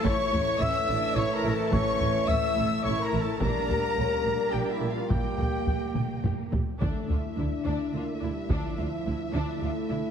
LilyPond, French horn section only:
\new Staff \with { instrumentName = "French horn section" } { \time 3/4 \key d \minor \tempo 4 = 107 cis''4 e''4 \tuplet 3/2 { cis''8 bes'8 a'8 } | cis''4 e''4 \tuplet 3/2 { cis''8 bes'8 a'8 } | bes'2 \tuplet 3/2 { g'8 e'8 f'8 } | g'2 r4 |
a4 d'4 \tuplet 3/2 { bes8 a8 g8 } | f2 a4 | }